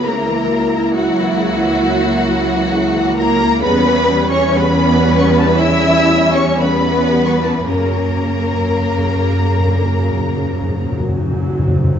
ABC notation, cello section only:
X:1
M:4/4
L:1/16
Q:1/4=60
K:F#phr
V:1 name="Cello section"
^A,4 F,8- F,2 A,2 | B,3 C B,4 E3 C B,4 | ^A,12 z4 |]